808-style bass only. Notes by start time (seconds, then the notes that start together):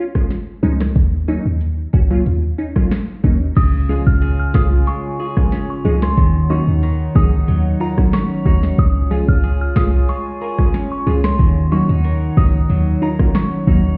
0.63 C#2
0.96 D#2
1.46 D#2
1.94 C#2
2.26 D#2
3.24 D#2
3.57 C#2
4.07 C#2
4.55 C2
5.85 C#2
6.18 D#2
6.67 D#2
7.16 C#2
7.48 D#2
8.46 D#2
8.78 C#2
9.28 C#2
9.76 C2
11.07 C#2
11.39 D#2
11.89 D#2
12.37 C#2
12.70 D#2
13.67 D#2